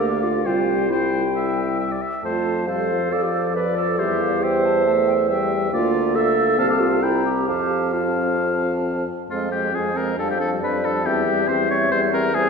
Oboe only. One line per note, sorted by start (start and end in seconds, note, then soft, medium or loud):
0.00 0.47 D5 soft
0.46 0.90 C5 soft
0.91 1.23 C5 soft
1.36 1.79 E5 soft
1.80 1.93 E5 soft
1.92 2.03 D5 soft
2.02 2.24 E5 soft
2.25 2.65 C5 soft
2.68 3.14 C5 soft
3.12 3.55 D5 soft
3.56 4.00 D5 soft
3.99 4.45 C5 soft
4.43 5.28 E5 soft
5.29 5.71 E5 soft
5.74 6.17 D5 medium
6.15 6.60 E5 soft
6.59 7.04 F5 medium
7.03 7.34 G5 soft
7.47 7.93 F5 soft
7.93 9.05 F5 soft
9.30 9.51 F4 soft
9.52 9.76 G4 soft
9.74 9.99 G#4 soft
9.97 10.18 A#4 soft
10.19 10.29 A4 soft
10.30 10.39 G4 soft
10.40 10.50 A4 medium
10.63 10.86 B4 medium
10.84 11.07 A4 medium
11.06 11.49 G4 medium
11.48 11.70 C5 medium
11.71 11.91 C#5 medium
11.91 12.01 C5 medium
12.13 12.36 A#4 medium
12.35 12.50 G#4 medium